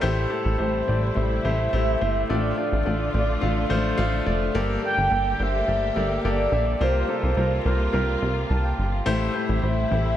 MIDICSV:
0, 0, Header, 1, 5, 480
1, 0, Start_track
1, 0, Tempo, 564440
1, 27, Time_signature, 4, 2, 24, 8
1, 8648, End_track
2, 0, Start_track
2, 0, Title_t, "Soft synth lead"
2, 0, Program_c, 0, 80
2, 514, Note_on_c, 0, 72, 86
2, 995, Note_on_c, 0, 76, 111
2, 1008, Note_off_c, 0, 72, 0
2, 1957, Note_on_c, 0, 74, 97
2, 1969, Note_off_c, 0, 76, 0
2, 2193, Note_off_c, 0, 74, 0
2, 2200, Note_on_c, 0, 74, 99
2, 3601, Note_off_c, 0, 74, 0
2, 4126, Note_on_c, 0, 79, 108
2, 4614, Note_on_c, 0, 76, 114
2, 4627, Note_off_c, 0, 79, 0
2, 5315, Note_off_c, 0, 76, 0
2, 5321, Note_on_c, 0, 74, 82
2, 5812, Note_on_c, 0, 72, 91
2, 5825, Note_off_c, 0, 74, 0
2, 6037, Note_off_c, 0, 72, 0
2, 6042, Note_on_c, 0, 72, 85
2, 6722, Note_off_c, 0, 72, 0
2, 8201, Note_on_c, 0, 76, 92
2, 8648, Note_off_c, 0, 76, 0
2, 8648, End_track
3, 0, Start_track
3, 0, Title_t, "Grand piano"
3, 0, Program_c, 1, 0
3, 0, Control_c, 1, 64, 127
3, 10, Note_on_c, 1, 57, 100
3, 12, Note_on_c, 1, 67, 87
3, 13, Note_on_c, 1, 45, 68
3, 13, Note_on_c, 1, 64, 91
3, 14, Note_on_c, 1, 72, 107
3, 39, Control_c, 1, 64, 0
3, 195, Note_off_c, 1, 57, 0
3, 196, Note_off_c, 1, 67, 0
3, 197, Note_off_c, 1, 64, 0
3, 197, Note_off_c, 1, 72, 0
3, 200, Control_c, 1, 64, 127
3, 257, Note_on_c, 1, 64, 72
3, 258, Note_on_c, 1, 67, 66
3, 259, Note_on_c, 1, 57, 73
3, 260, Note_on_c, 1, 69, 82
3, 439, Note_off_c, 1, 64, 0
3, 439, Note_off_c, 1, 67, 0
3, 440, Note_off_c, 1, 57, 0
3, 441, Note_off_c, 1, 69, 0
3, 493, Note_on_c, 1, 57, 67
3, 494, Note_on_c, 1, 64, 58
3, 497, Note_on_c, 1, 67, 57
3, 498, Note_on_c, 1, 72, 69
3, 677, Note_off_c, 1, 57, 0
3, 677, Note_off_c, 1, 64, 0
3, 679, Note_off_c, 1, 67, 0
3, 679, Note_off_c, 1, 72, 0
3, 707, Note_off_c, 1, 45, 0
3, 743, Note_on_c, 1, 57, 62
3, 744, Note_on_c, 1, 64, 55
3, 744, Note_on_c, 1, 67, 55
3, 746, Note_on_c, 1, 74, 70
3, 922, Note_off_c, 1, 57, 0
3, 923, Note_off_c, 1, 64, 0
3, 923, Note_off_c, 1, 67, 0
3, 923, Note_off_c, 1, 74, 0
3, 978, Note_on_c, 1, 57, 64
3, 980, Note_on_c, 1, 64, 57
3, 983, Note_on_c, 1, 67, 56
3, 983, Note_on_c, 1, 72, 67
3, 1160, Note_off_c, 1, 57, 0
3, 1161, Note_off_c, 1, 64, 0
3, 1162, Note_off_c, 1, 67, 0
3, 1162, Note_off_c, 1, 72, 0
3, 1229, Note_on_c, 1, 57, 78
3, 1229, Note_on_c, 1, 64, 74
3, 1231, Note_on_c, 1, 67, 73
3, 1232, Note_on_c, 1, 72, 89
3, 1405, Note_off_c, 1, 57, 0
3, 1405, Note_off_c, 1, 64, 0
3, 1406, Note_off_c, 1, 67, 0
3, 1407, Note_off_c, 1, 72, 0
3, 1468, Note_on_c, 1, 57, 81
3, 1471, Note_on_c, 1, 72, 89
3, 1472, Note_on_c, 1, 67, 77
3, 1473, Note_on_c, 1, 64, 76
3, 1645, Note_off_c, 1, 57, 0
3, 1646, Note_off_c, 1, 72, 0
3, 1647, Note_off_c, 1, 67, 0
3, 1648, Note_off_c, 1, 64, 0
3, 1711, Note_on_c, 1, 57, 78
3, 1711, Note_on_c, 1, 64, 67
3, 1713, Note_on_c, 1, 72, 81
3, 1714, Note_on_c, 1, 67, 71
3, 1887, Note_off_c, 1, 57, 0
3, 1887, Note_off_c, 1, 64, 0
3, 1887, Note_off_c, 1, 72, 0
3, 1888, Note_off_c, 1, 67, 0
3, 1951, Note_on_c, 1, 57, 82
3, 1953, Note_on_c, 1, 62, 78
3, 1953, Note_on_c, 1, 65, 74
3, 1955, Note_on_c, 1, 74, 93
3, 1956, Note_on_c, 1, 45, 57
3, 1960, Control_c, 1, 64, 0
3, 2109, Control_c, 1, 64, 127
3, 2127, Note_off_c, 1, 57, 0
3, 2128, Note_off_c, 1, 62, 0
3, 2128, Note_off_c, 1, 65, 0
3, 2129, Note_off_c, 1, 74, 0
3, 2186, Note_on_c, 1, 57, 64
3, 2188, Note_on_c, 1, 62, 56
3, 2192, Note_on_c, 1, 65, 61
3, 2193, Note_on_c, 1, 74, 69
3, 2364, Note_off_c, 1, 57, 0
3, 2365, Note_off_c, 1, 62, 0
3, 2367, Note_off_c, 1, 65, 0
3, 2368, Note_off_c, 1, 74, 0
3, 2426, Note_on_c, 1, 57, 68
3, 2429, Note_on_c, 1, 62, 61
3, 2429, Note_on_c, 1, 65, 60
3, 2431, Note_on_c, 1, 74, 72
3, 2604, Note_off_c, 1, 57, 0
3, 2606, Note_off_c, 1, 62, 0
3, 2606, Note_off_c, 1, 65, 0
3, 2607, Note_off_c, 1, 74, 0
3, 2639, Note_off_c, 1, 45, 0
3, 2670, Note_on_c, 1, 65, 62
3, 2671, Note_on_c, 1, 57, 65
3, 2672, Note_on_c, 1, 62, 60
3, 2674, Note_on_c, 1, 74, 72
3, 2846, Note_off_c, 1, 65, 0
3, 2847, Note_off_c, 1, 57, 0
3, 2847, Note_off_c, 1, 62, 0
3, 2848, Note_off_c, 1, 74, 0
3, 2901, Note_on_c, 1, 62, 66
3, 2904, Note_on_c, 1, 57, 80
3, 2904, Note_on_c, 1, 77, 86
3, 2905, Note_on_c, 1, 65, 67
3, 3082, Note_off_c, 1, 62, 0
3, 3083, Note_off_c, 1, 57, 0
3, 3084, Note_off_c, 1, 65, 0
3, 3084, Note_off_c, 1, 77, 0
3, 3144, Note_on_c, 1, 57, 95
3, 3145, Note_on_c, 1, 65, 86
3, 3147, Note_on_c, 1, 62, 85
3, 3147, Note_on_c, 1, 72, 99
3, 3323, Note_off_c, 1, 57, 0
3, 3324, Note_off_c, 1, 65, 0
3, 3325, Note_off_c, 1, 62, 0
3, 3325, Note_off_c, 1, 72, 0
3, 3380, Note_on_c, 1, 57, 96
3, 3381, Note_on_c, 1, 62, 93
3, 3382, Note_on_c, 1, 65, 94
3, 3382, Note_on_c, 1, 77, 108
3, 3562, Note_off_c, 1, 57, 0
3, 3562, Note_off_c, 1, 62, 0
3, 3562, Note_off_c, 1, 77, 0
3, 3563, Note_off_c, 1, 65, 0
3, 3625, Note_on_c, 1, 57, 76
3, 3626, Note_on_c, 1, 62, 72
3, 3626, Note_on_c, 1, 65, 72
3, 3627, Note_on_c, 1, 74, 88
3, 3804, Note_off_c, 1, 57, 0
3, 3804, Note_off_c, 1, 62, 0
3, 3804, Note_off_c, 1, 65, 0
3, 3805, Note_off_c, 1, 74, 0
3, 3866, Note_on_c, 1, 58, 103
3, 3868, Note_on_c, 1, 43, 65
3, 3868, Note_on_c, 1, 69, 92
3, 3869, Note_on_c, 1, 67, 92
3, 3869, Note_on_c, 1, 74, 113
3, 3880, Control_c, 1, 64, 0
3, 4037, Control_c, 1, 64, 127
3, 4044, Note_off_c, 1, 58, 0
3, 4046, Note_off_c, 1, 67, 0
3, 4046, Note_off_c, 1, 69, 0
3, 4046, Note_off_c, 1, 74, 0
3, 4102, Note_on_c, 1, 58, 65
3, 4106, Note_on_c, 1, 69, 61
3, 4107, Note_on_c, 1, 67, 63
3, 4107, Note_on_c, 1, 74, 70
3, 4283, Note_off_c, 1, 58, 0
3, 4284, Note_off_c, 1, 69, 0
3, 4285, Note_off_c, 1, 67, 0
3, 4285, Note_off_c, 1, 74, 0
3, 4344, Note_on_c, 1, 67, 61
3, 4346, Note_on_c, 1, 58, 65
3, 4348, Note_on_c, 1, 69, 61
3, 4350, Note_on_c, 1, 74, 73
3, 4524, Note_off_c, 1, 67, 0
3, 4525, Note_off_c, 1, 58, 0
3, 4525, Note_off_c, 1, 69, 0
3, 4527, Note_off_c, 1, 74, 0
3, 4555, Note_off_c, 1, 43, 0
3, 4589, Note_on_c, 1, 58, 65
3, 4590, Note_on_c, 1, 67, 58
3, 4590, Note_on_c, 1, 69, 62
3, 4592, Note_on_c, 1, 72, 72
3, 4766, Note_off_c, 1, 58, 0
3, 4766, Note_off_c, 1, 67, 0
3, 4767, Note_off_c, 1, 69, 0
3, 4768, Note_off_c, 1, 72, 0
3, 4828, Note_on_c, 1, 58, 62
3, 4829, Note_on_c, 1, 69, 59
3, 4830, Note_on_c, 1, 74, 73
3, 4833, Note_on_c, 1, 67, 60
3, 5006, Note_off_c, 1, 58, 0
3, 5006, Note_off_c, 1, 69, 0
3, 5007, Note_off_c, 1, 74, 0
3, 5008, Note_off_c, 1, 67, 0
3, 5065, Note_on_c, 1, 58, 81
3, 5068, Note_on_c, 1, 67, 75
3, 5068, Note_on_c, 1, 69, 75
3, 5069, Note_on_c, 1, 74, 86
3, 5244, Note_off_c, 1, 58, 0
3, 5246, Note_off_c, 1, 67, 0
3, 5246, Note_off_c, 1, 69, 0
3, 5246, Note_off_c, 1, 74, 0
3, 5313, Note_on_c, 1, 58, 86
3, 5314, Note_on_c, 1, 67, 79
3, 5315, Note_on_c, 1, 74, 91
3, 5316, Note_on_c, 1, 69, 79
3, 5488, Note_off_c, 1, 58, 0
3, 5489, Note_off_c, 1, 67, 0
3, 5489, Note_off_c, 1, 74, 0
3, 5490, Note_off_c, 1, 69, 0
3, 5550, Note_on_c, 1, 67, 59
3, 5552, Note_on_c, 1, 58, 64
3, 5552, Note_on_c, 1, 69, 64
3, 5555, Note_on_c, 1, 76, 70
3, 5727, Note_off_c, 1, 67, 0
3, 5728, Note_off_c, 1, 58, 0
3, 5728, Note_off_c, 1, 69, 0
3, 5729, Note_off_c, 1, 76, 0
3, 5788, Note_on_c, 1, 58, 87
3, 5789, Note_on_c, 1, 67, 79
3, 5790, Note_on_c, 1, 48, 56
3, 5790, Note_on_c, 1, 65, 78
3, 5791, Note_on_c, 1, 72, 92
3, 5802, Control_c, 1, 64, 0
3, 5948, Control_c, 1, 64, 127
3, 5966, Note_off_c, 1, 58, 0
3, 5966, Note_off_c, 1, 65, 0
3, 5966, Note_off_c, 1, 67, 0
3, 5967, Note_off_c, 1, 72, 0
3, 6024, Note_on_c, 1, 58, 65
3, 6028, Note_on_c, 1, 65, 58
3, 6028, Note_on_c, 1, 67, 60
3, 6028, Note_on_c, 1, 69, 74
3, 6204, Note_off_c, 1, 58, 0
3, 6206, Note_off_c, 1, 65, 0
3, 6206, Note_off_c, 1, 67, 0
3, 6206, Note_off_c, 1, 69, 0
3, 6265, Note_on_c, 1, 58, 66
3, 6268, Note_on_c, 1, 65, 61
3, 6269, Note_on_c, 1, 70, 74
3, 6270, Note_on_c, 1, 67, 59
3, 6444, Note_off_c, 1, 58, 0
3, 6446, Note_off_c, 1, 65, 0
3, 6446, Note_off_c, 1, 70, 0
3, 6447, Note_off_c, 1, 67, 0
3, 6476, Note_off_c, 1, 48, 0
3, 6508, Note_on_c, 1, 58, 62
3, 6512, Note_on_c, 1, 65, 58
3, 6514, Note_on_c, 1, 67, 56
3, 6515, Note_on_c, 1, 70, 70
3, 6686, Note_off_c, 1, 58, 0
3, 6688, Note_off_c, 1, 65, 0
3, 6689, Note_off_c, 1, 67, 0
3, 6689, Note_off_c, 1, 70, 0
3, 6742, Note_on_c, 1, 65, 72
3, 6744, Note_on_c, 1, 58, 73
3, 6744, Note_on_c, 1, 67, 70
3, 6747, Note_on_c, 1, 70, 84
3, 6923, Note_off_c, 1, 65, 0
3, 6924, Note_off_c, 1, 58, 0
3, 6924, Note_off_c, 1, 67, 0
3, 6925, Note_off_c, 1, 70, 0
3, 7224, Note_on_c, 1, 81, 60
3, 7341, Note_off_c, 1, 81, 0
3, 7351, Note_on_c, 1, 79, 57
3, 7578, Note_off_c, 1, 79, 0
3, 7589, Note_on_c, 1, 77, 58
3, 7701, Note_on_c, 1, 45, 67
3, 7702, Note_on_c, 1, 57, 101
3, 7704, Note_on_c, 1, 64, 97
3, 7705, Note_on_c, 1, 67, 90
3, 7705, Note_on_c, 1, 72, 112
3, 7720, Control_c, 1, 64, 0
3, 7817, Note_off_c, 1, 77, 0
3, 7883, Note_off_c, 1, 57, 0
3, 7883, Note_off_c, 1, 64, 0
3, 7884, Note_off_c, 1, 67, 0
3, 7884, Note_off_c, 1, 72, 0
3, 7884, Control_c, 1, 64, 127
3, 7940, Note_on_c, 1, 57, 73
3, 7940, Note_on_c, 1, 64, 72
3, 7941, Note_on_c, 1, 72, 88
3, 7942, Note_on_c, 1, 67, 67
3, 8121, Note_off_c, 1, 57, 0
3, 8121, Note_off_c, 1, 64, 0
3, 8122, Note_off_c, 1, 67, 0
3, 8122, Note_off_c, 1, 72, 0
3, 8181, Note_on_c, 1, 57, 64
3, 8181, Note_on_c, 1, 64, 59
3, 8182, Note_on_c, 1, 72, 72
3, 8184, Note_on_c, 1, 67, 60
3, 8362, Note_off_c, 1, 57, 0
3, 8362, Note_off_c, 1, 64, 0
3, 8362, Note_off_c, 1, 72, 0
3, 8364, Note_off_c, 1, 67, 0
3, 8391, Note_off_c, 1, 45, 0
3, 8424, Note_on_c, 1, 57, 64
3, 8426, Note_on_c, 1, 64, 57
3, 8426, Note_on_c, 1, 67, 61
3, 8426, Note_on_c, 1, 72, 73
3, 8603, Note_off_c, 1, 57, 0
3, 8604, Note_off_c, 1, 64, 0
3, 8604, Note_off_c, 1, 67, 0
3, 8605, Note_off_c, 1, 72, 0
3, 8648, End_track
4, 0, Start_track
4, 0, Title_t, "String section"
4, 0, Program_c, 2, 48
4, 13, Note_on_c, 2, 57, 58
4, 15, Note_on_c, 2, 64, 68
4, 17, Note_on_c, 2, 48, 65
4, 18, Note_on_c, 2, 55, 57
4, 1924, Note_off_c, 2, 64, 0
4, 1925, Note_off_c, 2, 48, 0
4, 1925, Note_off_c, 2, 55, 0
4, 1938, Note_on_c, 2, 53, 61
4, 1939, Note_on_c, 2, 50, 65
4, 1939, Note_on_c, 2, 65, 69
4, 3845, Note_off_c, 2, 53, 0
4, 3846, Note_off_c, 2, 50, 0
4, 3846, Note_off_c, 2, 65, 0
4, 3872, Note_on_c, 2, 50, 65
4, 3874, Note_on_c, 2, 58, 61
4, 3876, Note_on_c, 2, 67, 76
4, 5749, Note_off_c, 2, 57, 0
4, 5772, Note_off_c, 2, 50, 0
4, 5774, Note_off_c, 2, 67, 0
4, 5788, Note_on_c, 2, 65, 73
4, 5790, Note_on_c, 2, 48, 70
4, 5791, Note_on_c, 2, 55, 63
4, 7678, Note_off_c, 2, 58, 0
4, 7690, Note_off_c, 2, 65, 0
4, 7691, Note_off_c, 2, 48, 0
4, 7691, Note_off_c, 2, 55, 0
4, 7702, Note_on_c, 2, 64, 76
4, 7703, Note_on_c, 2, 55, 57
4, 7703, Note_on_c, 2, 57, 58
4, 7704, Note_on_c, 2, 48, 67
4, 8648, Note_off_c, 2, 48, 0
4, 8648, Note_off_c, 2, 55, 0
4, 8648, Note_off_c, 2, 57, 0
4, 8648, Note_off_c, 2, 64, 0
4, 8648, End_track
5, 0, Start_track
5, 0, Title_t, "Analog synth bass"
5, 0, Program_c, 3, 38
5, 28, Note_on_c, 3, 33, 101
5, 225, Note_off_c, 3, 33, 0
5, 388, Note_on_c, 3, 33, 90
5, 486, Note_off_c, 3, 33, 0
5, 508, Note_on_c, 3, 33, 99
5, 705, Note_off_c, 3, 33, 0
5, 754, Note_on_c, 3, 33, 99
5, 949, Note_off_c, 3, 33, 0
5, 992, Note_on_c, 3, 33, 89
5, 1187, Note_off_c, 3, 33, 0
5, 1233, Note_on_c, 3, 33, 94
5, 1428, Note_off_c, 3, 33, 0
5, 1475, Note_on_c, 3, 33, 90
5, 1669, Note_off_c, 3, 33, 0
5, 1716, Note_on_c, 3, 31, 84
5, 1910, Note_off_c, 3, 31, 0
5, 1956, Note_on_c, 3, 33, 100
5, 2150, Note_off_c, 3, 33, 0
5, 2318, Note_on_c, 3, 33, 91
5, 2413, Note_off_c, 3, 33, 0
5, 2438, Note_on_c, 3, 33, 98
5, 2631, Note_off_c, 3, 33, 0
5, 2672, Note_on_c, 3, 33, 95
5, 2868, Note_off_c, 3, 33, 0
5, 2914, Note_on_c, 3, 33, 95
5, 3109, Note_off_c, 3, 33, 0
5, 3150, Note_on_c, 3, 33, 88
5, 3347, Note_off_c, 3, 33, 0
5, 3390, Note_on_c, 3, 33, 90
5, 3586, Note_off_c, 3, 33, 0
5, 3630, Note_on_c, 3, 29, 80
5, 3827, Note_off_c, 3, 29, 0
5, 3870, Note_on_c, 3, 31, 96
5, 4067, Note_off_c, 3, 31, 0
5, 4232, Note_on_c, 3, 31, 88
5, 4330, Note_off_c, 3, 31, 0
5, 4351, Note_on_c, 3, 31, 99
5, 4548, Note_off_c, 3, 31, 0
5, 4590, Note_on_c, 3, 31, 91
5, 4787, Note_off_c, 3, 31, 0
5, 4833, Note_on_c, 3, 31, 91
5, 5028, Note_off_c, 3, 31, 0
5, 5071, Note_on_c, 3, 31, 90
5, 5268, Note_off_c, 3, 31, 0
5, 5314, Note_on_c, 3, 31, 91
5, 5509, Note_off_c, 3, 31, 0
5, 5544, Note_on_c, 3, 34, 96
5, 5744, Note_off_c, 3, 34, 0
5, 5790, Note_on_c, 3, 36, 102
5, 5987, Note_off_c, 3, 36, 0
5, 6151, Note_on_c, 3, 36, 86
5, 6249, Note_off_c, 3, 36, 0
5, 6266, Note_on_c, 3, 36, 93
5, 6464, Note_off_c, 3, 36, 0
5, 6509, Note_on_c, 3, 36, 93
5, 6706, Note_off_c, 3, 36, 0
5, 6749, Note_on_c, 3, 36, 97
5, 6946, Note_off_c, 3, 36, 0
5, 6992, Note_on_c, 3, 36, 90
5, 7188, Note_off_c, 3, 36, 0
5, 7232, Note_on_c, 3, 36, 93
5, 7428, Note_off_c, 3, 36, 0
5, 7473, Note_on_c, 3, 31, 83
5, 7669, Note_off_c, 3, 31, 0
5, 7710, Note_on_c, 3, 33, 96
5, 7907, Note_off_c, 3, 33, 0
5, 8073, Note_on_c, 3, 33, 93
5, 8170, Note_off_c, 3, 33, 0
5, 8188, Note_on_c, 3, 33, 94
5, 8386, Note_off_c, 3, 33, 0
5, 8431, Note_on_c, 3, 33, 98
5, 8627, Note_off_c, 3, 33, 0
5, 8648, End_track
0, 0, End_of_file